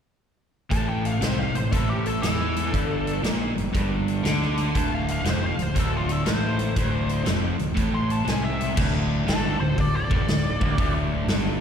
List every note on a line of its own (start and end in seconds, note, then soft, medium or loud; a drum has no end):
0.70 1.18 A1 medium
0.70 1.20 A2 medium
0.70 0.88 A5 medium
0.70 kick medium
0.70 closed hi-hat medium
0.89 1.05 G5 medium
1.05 1.22 F5 medium
1.05 closed hi-hat medium
1.21 1.52 C2 medium
1.21 1.53 C3 medium
1.21 1.39 C5 medium
1.21 snare medium
1.21 closed hi-hat medium
1.39 1.55 F5 medium
1.54 1.71 A1 medium
1.54 1.69 A2 medium
1.54 1.72 C5 medium
1.54 closed hi-hat medium
1.71 2.19 A1 medium
1.71 2.22 A2 medium
1.71 1.89 A4 medium
1.71 kick medium
1.71 closed hi-hat medium
1.89 2.06 G4 medium
2.06 2.22 A4 medium
2.06 closed hi-hat soft
2.22 2.70 E2 medium
2.22 2.72 E3 medium
2.22 3.21 A4 medium
2.22 snare medium
2.22 closed hi-hat medium
2.56 closed hi-hat medium
2.72 3.20 G1 medium
2.72 3.23 G2 medium
2.72 kick medium
2.72 closed hi-hat medium
3.07 closed hi-hat medium
3.23 3.54 A#1 medium
3.23 3.55 A#2 medium
3.23 snare loud
3.23 closed hi-hat medium
3.56 3.73 G1 medium
3.56 3.70 G2 medium
3.56 closed hi-hat soft
3.73 4.21 G1 medium
3.73 4.23 G2 loud
3.73 kick medium
3.73 closed hi-hat medium
4.08 closed hi-hat soft
4.23 4.71 D2 medium
4.23 4.74 D3 medium
4.23 snare loud
4.23 closed hi-hat medium
4.42 snare soft
4.58 closed hi-hat medium
4.74 5.22 D1 medium
4.74 5.23 D2 medium
4.74 4.92 A5 loud
4.74 kick medium
4.74 closed hi-hat medium
4.95 5.09 F5 medium
5.08 5.26 F5 medium
5.08 closed hi-hat soft
5.24 5.56 F1 medium
5.24 5.56 F2 medium
5.24 snare loud
5.24 closed hi-hat medium
5.29 5.44 C5 medium
5.46 5.60 F5 medium
5.57 5.74 D1 medium
5.57 5.72 D2 medium
5.57 closed hi-hat medium
5.62 5.79 C5 medium
5.74 6.23 D1 medium
5.74 6.25 D2 medium
5.74 kick medium
5.74 closed hi-hat medium
5.79 5.94 A4 medium
5.97 6.11 F4 medium
6.09 6.27 A4 medium
6.09 closed hi-hat medium
6.25 6.73 A1 medium
6.25 6.75 A2 loud
6.25 7.24 C5 medium
6.25 snare medium
6.25 closed hi-hat medium
6.59 closed hi-hat medium
6.76 7.23 D1 medium
6.76 7.25 D2 medium
6.76 kick medium
6.76 closed hi-hat medium
7.09 closed hi-hat medium
7.25 7.57 F1 medium
7.25 7.58 F2 medium
7.25 snare loud
7.25 closed hi-hat medium
7.58 7.75 D1 medium
7.58 7.73 D2 medium
7.58 closed hi-hat medium
7.74 8.24 A1 medium
7.74 8.24 A2 loud
7.74 kick medium
7.74 closed hi-hat medium
7.95 8.10 C6 medium
8.10 8.27 A5 medium
8.10 closed hi-hat soft
8.25 8.74 C2 medium
8.25 8.75 C3 loud
8.25 8.44 G#5 medium
8.25 snare medium
8.25 closed hi-hat medium
8.44 8.76 E5 medium
8.61 closed hi-hat medium
8.75 9.24 D1 medium
8.75 9.26 D2 loud
8.75 kick loud
8.75 crash medium
9.27 9.58 G1 medium
9.27 9.59 G2 medium
9.27 9.62 F#4 medium
9.27 9.60 A4 medium
9.27 snare loud
9.27 open hi-hat medium
9.60 9.76 D1 medium
9.60 9.74 D2 medium
9.60 9.80 C5 medium
9.64 9.78 A4 medium
9.77 10.08 D1 medium
9.77 10.04 D2 medium
9.77 9.95 A4 medium
9.77 9.95 D5 medium
9.77 kick medium
9.77 open hi-hat soft
9.96 10.92 A4 medium
9.96 10.93 D5 medium
10.10 10.26 F1 medium
10.10 10.27 F2 loud
10.10 kick loud
10.27 10.58 D1 medium
10.27 10.54 D2 medium
10.27 snare loud
10.27 open hi-hat soft
10.61 10.77 D1 medium
10.61 10.76 D2 medium
10.61 kick loud
10.77 11.25 D1 medium
10.77 11.27 D2 loud
10.77 kick loud
10.77 open hi-hat medium
11.27 11.58 G1 medium
11.27 11.61 G2 medium
11.27 snare loud
11.27 open hi-hat soft